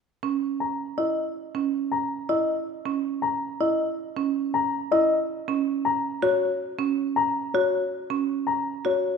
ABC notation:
X:1
M:7/8
L:1/8
Q:1/4=160
K:C#dor
V:1 name="Grand piano"
z3 a z d z | z3 a z d z | z3 a z d z | z3 a z d z |
z3 a z c z | z3 a z c z | z3 a z c z |]
V:2 name="Marimba"
z C z3 E z | z C z3 E z | z C z3 E z | z C z3 E z |
z C z3 F z | z C z3 F z | z C z3 F z |]